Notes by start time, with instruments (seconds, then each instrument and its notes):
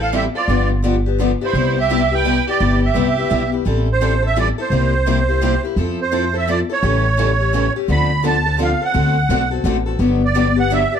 Already playing: upright bass A1
0.00 steel-string acoustic guitar C4 E4 A4, violin A4, accordion F5
0.13 steel-string acoustic guitar E3 G3 C4 E4 A4, violin G4, accordion E5
0.35 steel-string acoustic guitar C4 E4 A4, violin F4, accordion D5
0.48 upright bass G1, steel-string acoustic guitar D3 F3 B3 D4 G4
0.84 steel-string acoustic guitar D3 F3 B3 D4 G4
1.06 steel-string acoustic guitar B3 D4 G4
1.20 steel-string acoustic guitar D3 F3 B3 D4 G4
1.41 steel-string acoustic guitar B3 D4 G4, violin E4, accordion C5
1.53 upright bass C2, steel-string acoustic guitar C3 G3 B3 E4 G4
1.77 violin G4, accordion E5
1.90 steel-string acoustic guitar C3 G3 B3 E4 G4
2.11 steel-string acoustic guitar B3 E4 G4, violin B4, accordion G5
2.25 steel-string acoustic guitar C3 G3 B3 E4 G4
2.47 steel-string acoustic guitar B3 E4 G4, violin G4, accordion D5
2.60 upright bass G1, steel-string acoustic guitar C3 G3 B3 E4 G4
2.82 violin G4, accordion E5
2.95 upright bass C2, steel-string acoustic guitar C3 G3 B3 E4 G4
3.17 steel-string acoustic guitar B3 E4 G4
3.30 upright bass B1, steel-string acoustic guitar C3 G3 B3 E4 G4
3.52 steel-string acoustic guitar B3 E4 G4
3.65 upright bass A1, steel-string acoustic guitar E3 G3 C4 E4 A4
3.92 accordion C5
4.01 steel-string acoustic guitar E3 G3 C4 E4 A4
4.22 steel-string acoustic guitar C4 E4 A4
4.27 accordion E5
4.36 steel-string acoustic guitar E3 G3 C4 E4 A4, accordion D5
4.58 steel-string acoustic guitar C4 E4 A4, accordion C5
4.70 upright bass C2, steel-string acoustic guitar C3 G3 A#3 E4 G4
5.06 steel-string acoustic guitar C3 G3 A#3 E4 G4
5.28 steel-string acoustic guitar A#3 E4 G4
5.42 steel-string acoustic guitar C3 G3 A#3 E4 G4
5.63 steel-string acoustic guitar A#3 E4 G4
5.76 upright bass F2, steel-string acoustic guitar F3 C4 E4 A4
6.01 accordion C5
6.12 steel-string acoustic guitar F3 C4 E4 A4
6.34 steel-string acoustic guitar C4 E4 A4
6.38 accordion E5
6.48 steel-string acoustic guitar F3 C4 E4 A4, accordion D5
6.70 steel-string acoustic guitar C4 E4 A4, accordion C#5
6.82 upright bass A1, steel-string acoustic guitar C#3 E3 G3 A3 C#4 E4 G4 A4
7.17 steel-string acoustic guitar C#3 E3 G3 A3 C#4 E4 G4 A4
7.40 steel-string acoustic guitar A3 C#4 G4
7.53 steel-string acoustic guitar C#3 E3 G3 A3 C#4 E4 G4 A4
7.76 steel-string acoustic guitar A3 C#4 G4
7.88 upright bass D2, steel-string acoustic guitar D3 F3 C4 D4 A4, accordion B5
8.24 steel-string acoustic guitar D3 F3 C4 D4 A4, accordion A5
8.46 steel-string acoustic guitar C4 D4 A4
8.59 steel-string acoustic guitar D3 F3 C4 D4 A4, accordion F5
8.81 steel-string acoustic guitar C4 D4 A4, accordion F#5
8.94 upright bass D2, steel-string acoustic guitar D3 A3 C4 F#4 A4
9.29 upright bass B1, steel-string acoustic guitar D3 A3 C4 F#4 A4
9.51 steel-string acoustic guitar C4 F#4 A4
9.64 upright bass A1, steel-string acoustic guitar D3 A3 C4 F#4 A4
9.86 steel-string acoustic guitar C4 F#4 A4
9.99 upright bass G1, steel-string acoustic guitar D3 F#3 B3 D4 G4
10.25 accordion D5
10.34 steel-string acoustic guitar D3 F#3 B3 D4 G4
10.56 steel-string acoustic guitar B3 D4 G4, accordion F#5
10.70 steel-string acoustic guitar D3 F#3 B3 D4 G4, accordion E5
10.92 steel-string acoustic guitar B3 D4 G4, accordion D5